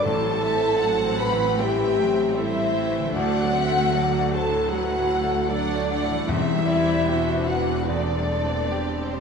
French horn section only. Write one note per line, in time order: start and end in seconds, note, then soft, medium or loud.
0.03 1.19 A4 loud
1.19 1.58 B4 loud
1.59 2.37 G4 loud
2.37 3.15 E4 loud
3.15 4.33 F#4 loud
4.34 4.73 A4 loud
4.72 5.50 F#4 loud
5.50 6.10 D4 loud
6.27 7.45 E4 loud
7.48 7.89 F#4 loud
7.90 9.14 D4 loud
9.14 9.20 C4 medium